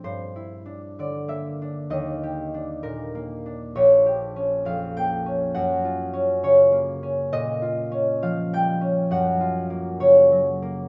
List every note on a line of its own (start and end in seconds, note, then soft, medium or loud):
0.00 1.95 G2 soft
0.00 0.64 D4 soft
0.00 1.74 A#4 medium
0.04 1.65 C5 medium
0.36 1.94 E4 soft
0.66 1.60 D4 soft
0.99 1.94 D3 soft
0.99 3.79 D5 soft
1.28 3.14 A#3 soft
1.28 1.93 E5 medium
1.62 2.53 D4 soft
1.90 3.78 D#2 soft
1.90 3.78 D#5 medium
2.23 4.05 G4 soft
2.54 3.45 D4 soft
2.83 3.78 A#2 soft
2.83 6.73 A#4 medium
3.15 4.96 A#3 soft
3.46 3.79 D4 soft
3.75 5.58 A#1 medium
3.75 6.42 C#5 medium
4.06 5.57 G4 soft
4.36 5.25 C#4 soft
4.65 5.57 F2 soft
4.65 8.21 F5 medium
4.97 6.71 A#3 soft
4.97 5.58 G5 medium
5.26 6.12 C#4 soft
5.54 7.34 F#2 medium
5.54 7.33 F#5 medium
5.85 7.61 F4 soft
6.13 7.02 C#4 soft
6.43 7.35 C#3 soft
6.43 9.99 C#5 medium
6.72 9.69 A#3 medium
7.03 7.90 C#4 soft
7.32 9.14 A#2 medium
7.32 8.85 D#5 medium
7.62 9.39 F4 soft
7.91 8.80 C#4 medium
8.22 10.88 F3 soft
8.22 10.88 F5 medium
8.53 9.14 G3 soft
8.53 9.14 G5 medium
8.81 10.88 C#4 soft
9.11 10.88 F#2 medium
9.11 10.88 F#5 medium
9.41 10.88 F4 medium
9.70 10.61 A#3 soft
10.00 10.88 C#3 soft
10.00 10.88 C#5 medium
10.32 10.88 F#3 soft
10.62 10.88 A#3 medium